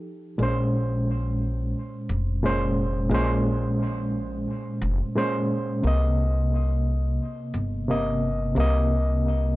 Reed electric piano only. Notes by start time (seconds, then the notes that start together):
Already playing: F3 D#4 G4 A4
0.38 A#2 G#3 C#4
0.43 C5
2.43 A#2 G#3 C#4 C5
3.10 A#2 G#3 C#4
3.15 C5
5.16 A#2 G#3 C#4 C5
5.83 C3 A#3
5.87 D#5
7.88 C3 A#3 D#5
8.55 C3 A#3
8.60 D#5